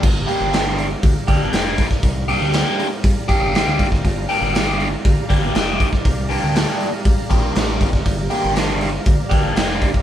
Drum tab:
CC |x---------------|----------------|----------------|----------------|
HH |--o-o-o-o-o-o-o-|o-o-o-o-o-o-o-o-|o-o-o-o-o-o-o-o-|o-o-o-o-o-o-o-o-|
SD |----o-------o-oo|----o-------o--o|----o-------o--o|----o-------o--o|
BD |o-------o-o---oo|o-------o-o---oo|o-------o-o---oo|o-------o-o---oo|

CC |----------------|
HH |o-o-o-o-o-o-o-o-|
SD |----o-------o---|
BD |o-------o-o---oo|